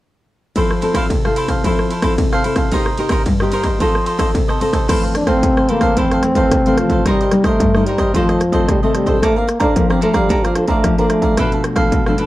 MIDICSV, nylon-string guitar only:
0, 0, Header, 1, 2, 480
1, 0, Start_track
1, 0, Key_signature, -1, "major"
1, 0, Tempo, 541516
1, 495, Time_signature, 4, 2, 24, 8
1, 10868, End_track
2, 0, Start_track
2, 0, Title_t, "Nylon-string guitar"
2, 0, Program_c, 0, 24
2, 497, Note_on_c, 0, 53, 55
2, 499, Note_on_c, 0, 60, 44
2, 502, Note_on_c, 0, 64, 47
2, 506, Note_on_c, 0, 69, 51
2, 638, Note_off_c, 0, 60, 0
2, 641, Note_off_c, 0, 64, 0
2, 641, Note_off_c, 0, 69, 0
2, 732, Note_on_c, 0, 60, 45
2, 736, Note_on_c, 0, 64, 46
2, 739, Note_on_c, 0, 69, 55
2, 953, Note_off_c, 0, 53, 0
2, 984, Note_on_c, 0, 48, 62
2, 1056, Note_off_c, 0, 60, 0
2, 1057, Note_off_c, 0, 64, 0
2, 1059, Note_off_c, 0, 69, 0
2, 1111, Note_on_c, 0, 60, 48
2, 1116, Note_on_c, 0, 64, 47
2, 1120, Note_on_c, 0, 69, 56
2, 1426, Note_off_c, 0, 60, 0
2, 1427, Note_off_c, 0, 64, 0
2, 1430, Note_off_c, 0, 69, 0
2, 1437, Note_off_c, 0, 48, 0
2, 1464, Note_on_c, 0, 53, 57
2, 1467, Note_on_c, 0, 60, 48
2, 1472, Note_on_c, 0, 64, 45
2, 1472, Note_on_c, 0, 69, 54
2, 1687, Note_off_c, 0, 60, 0
2, 1688, Note_off_c, 0, 64, 0
2, 1690, Note_off_c, 0, 69, 0
2, 1798, Note_on_c, 0, 60, 52
2, 1804, Note_on_c, 0, 64, 54
2, 1806, Note_on_c, 0, 69, 51
2, 1918, Note_off_c, 0, 53, 0
2, 1936, Note_on_c, 0, 48, 55
2, 2130, Note_off_c, 0, 60, 0
2, 2131, Note_off_c, 0, 64, 0
2, 2133, Note_off_c, 0, 69, 0
2, 2165, Note_on_c, 0, 60, 44
2, 2172, Note_on_c, 0, 64, 42
2, 2175, Note_on_c, 0, 69, 51
2, 2373, Note_off_c, 0, 60, 0
2, 2376, Note_off_c, 0, 64, 0
2, 2378, Note_off_c, 0, 69, 0
2, 2393, Note_off_c, 0, 48, 0
2, 2415, Note_on_c, 0, 48, 55
2, 2417, Note_on_c, 0, 58, 50
2, 2419, Note_on_c, 0, 63, 54
2, 2423, Note_on_c, 0, 67, 52
2, 2557, Note_off_c, 0, 58, 0
2, 2560, Note_off_c, 0, 63, 0
2, 2560, Note_off_c, 0, 67, 0
2, 2643, Note_on_c, 0, 58, 53
2, 2647, Note_on_c, 0, 63, 49
2, 2649, Note_on_c, 0, 67, 54
2, 2873, Note_off_c, 0, 48, 0
2, 2876, Note_off_c, 0, 58, 0
2, 2877, Note_off_c, 0, 63, 0
2, 2879, Note_off_c, 0, 67, 0
2, 2899, Note_on_c, 0, 43, 65
2, 3021, Note_on_c, 0, 58, 47
2, 3025, Note_on_c, 0, 63, 51
2, 3031, Note_on_c, 0, 67, 64
2, 3341, Note_off_c, 0, 58, 0
2, 3344, Note_off_c, 0, 63, 0
2, 3346, Note_off_c, 0, 67, 0
2, 3355, Note_off_c, 0, 43, 0
2, 3368, Note_on_c, 0, 53, 61
2, 3374, Note_on_c, 0, 60, 53
2, 3377, Note_on_c, 0, 63, 50
2, 3381, Note_on_c, 0, 69, 56
2, 3601, Note_off_c, 0, 60, 0
2, 3603, Note_off_c, 0, 63, 0
2, 3604, Note_off_c, 0, 69, 0
2, 3711, Note_on_c, 0, 60, 58
2, 3715, Note_on_c, 0, 63, 54
2, 3717, Note_on_c, 0, 69, 60
2, 3830, Note_off_c, 0, 53, 0
2, 3853, Note_on_c, 0, 48, 60
2, 4047, Note_off_c, 0, 60, 0
2, 4047, Note_off_c, 0, 63, 0
2, 4050, Note_off_c, 0, 69, 0
2, 4087, Note_on_c, 0, 60, 50
2, 4092, Note_on_c, 0, 63, 51
2, 4095, Note_on_c, 0, 69, 54
2, 4294, Note_off_c, 0, 60, 0
2, 4297, Note_off_c, 0, 63, 0
2, 4298, Note_off_c, 0, 69, 0
2, 4312, Note_off_c, 0, 48, 0
2, 4333, Note_on_c, 0, 41, 60
2, 4336, Note_on_c, 0, 52, 47
2, 4342, Note_on_c, 0, 57, 52
2, 4342, Note_on_c, 0, 60, 56
2, 4658, Note_off_c, 0, 52, 0
2, 4660, Note_off_c, 0, 57, 0
2, 4662, Note_off_c, 0, 60, 0
2, 4668, Note_on_c, 0, 52, 49
2, 4673, Note_on_c, 0, 57, 48
2, 4678, Note_on_c, 0, 60, 58
2, 4793, Note_off_c, 0, 41, 0
2, 4807, Note_on_c, 0, 48, 58
2, 5005, Note_off_c, 0, 52, 0
2, 5008, Note_off_c, 0, 57, 0
2, 5010, Note_off_c, 0, 60, 0
2, 5047, Note_on_c, 0, 52, 46
2, 5052, Note_on_c, 0, 57, 45
2, 5056, Note_on_c, 0, 60, 50
2, 5269, Note_off_c, 0, 48, 0
2, 5294, Note_on_c, 0, 41, 60
2, 5494, Note_off_c, 0, 52, 0
2, 5497, Note_off_c, 0, 57, 0
2, 5499, Note_off_c, 0, 60, 0
2, 5520, Note_on_c, 0, 52, 43
2, 5524, Note_on_c, 0, 57, 53
2, 5530, Note_on_c, 0, 60, 57
2, 5611, Note_off_c, 0, 52, 0
2, 5613, Note_off_c, 0, 57, 0
2, 5615, Note_off_c, 0, 60, 0
2, 5631, Note_on_c, 0, 52, 49
2, 5635, Note_on_c, 0, 57, 54
2, 5636, Note_on_c, 0, 60, 67
2, 5752, Note_off_c, 0, 41, 0
2, 5770, Note_on_c, 0, 48, 55
2, 5846, Note_off_c, 0, 52, 0
2, 5848, Note_off_c, 0, 60, 0
2, 5849, Note_off_c, 0, 57, 0
2, 5904, Note_on_c, 0, 52, 58
2, 5907, Note_on_c, 0, 57, 56
2, 5909, Note_on_c, 0, 60, 53
2, 6223, Note_off_c, 0, 52, 0
2, 6224, Note_off_c, 0, 57, 0
2, 6225, Note_off_c, 0, 60, 0
2, 6230, Note_off_c, 0, 48, 0
2, 6253, Note_on_c, 0, 48, 61
2, 6256, Note_on_c, 0, 55, 51
2, 6260, Note_on_c, 0, 63, 53
2, 6263, Note_on_c, 0, 58, 52
2, 6458, Note_off_c, 0, 55, 0
2, 6459, Note_off_c, 0, 58, 0
2, 6461, Note_off_c, 0, 63, 0
2, 6485, Note_on_c, 0, 55, 49
2, 6490, Note_on_c, 0, 58, 55
2, 6495, Note_on_c, 0, 63, 61
2, 6712, Note_off_c, 0, 48, 0
2, 6716, Note_off_c, 0, 55, 0
2, 6719, Note_off_c, 0, 58, 0
2, 6721, Note_off_c, 0, 63, 0
2, 6742, Note_on_c, 0, 43, 65
2, 6870, Note_on_c, 0, 55, 58
2, 6873, Note_on_c, 0, 58, 51
2, 6877, Note_on_c, 0, 63, 69
2, 7185, Note_off_c, 0, 55, 0
2, 7187, Note_off_c, 0, 58, 0
2, 7188, Note_off_c, 0, 63, 0
2, 7196, Note_off_c, 0, 43, 0
2, 7222, Note_on_c, 0, 51, 46
2, 7224, Note_on_c, 0, 41, 60
2, 7226, Note_on_c, 0, 57, 51
2, 7229, Note_on_c, 0, 60, 53
2, 7444, Note_off_c, 0, 51, 0
2, 7447, Note_off_c, 0, 57, 0
2, 7448, Note_off_c, 0, 60, 0
2, 7557, Note_on_c, 0, 51, 54
2, 7561, Note_on_c, 0, 57, 52
2, 7567, Note_on_c, 0, 60, 59
2, 7676, Note_off_c, 0, 41, 0
2, 7698, Note_on_c, 0, 48, 61
2, 7768, Note_off_c, 0, 51, 0
2, 7770, Note_off_c, 0, 57, 0
2, 7772, Note_off_c, 0, 60, 0
2, 7826, Note_on_c, 0, 51, 57
2, 7829, Note_on_c, 0, 57, 51
2, 7834, Note_on_c, 0, 60, 56
2, 8023, Note_off_c, 0, 51, 0
2, 8024, Note_off_c, 0, 57, 0
2, 8025, Note_off_c, 0, 60, 0
2, 8042, Note_on_c, 0, 62, 50
2, 8046, Note_on_c, 0, 69, 61
2, 8052, Note_on_c, 0, 72, 58
2, 8153, Note_off_c, 0, 48, 0
2, 8178, Note_on_c, 0, 58, 60
2, 8370, Note_off_c, 0, 62, 0
2, 8372, Note_off_c, 0, 69, 0
2, 8374, Note_off_c, 0, 72, 0
2, 8516, Note_on_c, 0, 62, 59
2, 8521, Note_on_c, 0, 69, 48
2, 8524, Note_on_c, 0, 72, 57
2, 8632, Note_off_c, 0, 58, 0
2, 8654, Note_on_c, 0, 53, 70
2, 8848, Note_off_c, 0, 62, 0
2, 8849, Note_off_c, 0, 69, 0
2, 8849, Note_off_c, 0, 72, 0
2, 8883, Note_on_c, 0, 62, 43
2, 8888, Note_on_c, 0, 69, 47
2, 8892, Note_on_c, 0, 72, 55
2, 9110, Note_off_c, 0, 53, 0
2, 9127, Note_on_c, 0, 58, 62
2, 9330, Note_off_c, 0, 62, 0
2, 9332, Note_off_c, 0, 69, 0
2, 9334, Note_off_c, 0, 72, 0
2, 9362, Note_on_c, 0, 62, 53
2, 9366, Note_on_c, 0, 69, 51
2, 9369, Note_on_c, 0, 72, 60
2, 9450, Note_off_c, 0, 62, 0
2, 9451, Note_off_c, 0, 69, 0
2, 9453, Note_off_c, 0, 72, 0
2, 9464, Note_on_c, 0, 62, 51
2, 9470, Note_on_c, 0, 69, 54
2, 9472, Note_on_c, 0, 72, 65
2, 9586, Note_off_c, 0, 58, 0
2, 9606, Note_on_c, 0, 53, 62
2, 9681, Note_off_c, 0, 62, 0
2, 9682, Note_off_c, 0, 69, 0
2, 9684, Note_off_c, 0, 72, 0
2, 9730, Note_on_c, 0, 62, 60
2, 9734, Note_on_c, 0, 69, 59
2, 9737, Note_on_c, 0, 72, 64
2, 10053, Note_off_c, 0, 62, 0
2, 10055, Note_off_c, 0, 69, 0
2, 10056, Note_off_c, 0, 72, 0
2, 10065, Note_off_c, 0, 53, 0
2, 10087, Note_on_c, 0, 47, 62
2, 10089, Note_on_c, 0, 53, 50
2, 10094, Note_on_c, 0, 57, 50
2, 10095, Note_on_c, 0, 62, 53
2, 10411, Note_off_c, 0, 53, 0
2, 10414, Note_off_c, 0, 57, 0
2, 10414, Note_off_c, 0, 62, 0
2, 10425, Note_on_c, 0, 53, 48
2, 10430, Note_on_c, 0, 57, 49
2, 10435, Note_on_c, 0, 62, 54
2, 10545, Note_off_c, 0, 47, 0
2, 10569, Note_on_c, 0, 47, 63
2, 10640, Note_off_c, 0, 53, 0
2, 10642, Note_off_c, 0, 57, 0
2, 10645, Note_off_c, 0, 62, 0
2, 10698, Note_on_c, 0, 53, 51
2, 10702, Note_on_c, 0, 57, 49
2, 10708, Note_on_c, 0, 62, 70
2, 10776, Note_off_c, 0, 53, 0
2, 10778, Note_off_c, 0, 57, 0
2, 10780, Note_off_c, 0, 62, 0
2, 10792, Note_on_c, 0, 53, 45
2, 10797, Note_on_c, 0, 57, 44
2, 10800, Note_on_c, 0, 62, 54
2, 10868, Note_off_c, 0, 47, 0
2, 10868, Note_off_c, 0, 53, 0
2, 10868, Note_off_c, 0, 57, 0
2, 10868, Note_off_c, 0, 62, 0
2, 10868, End_track
0, 0, End_of_file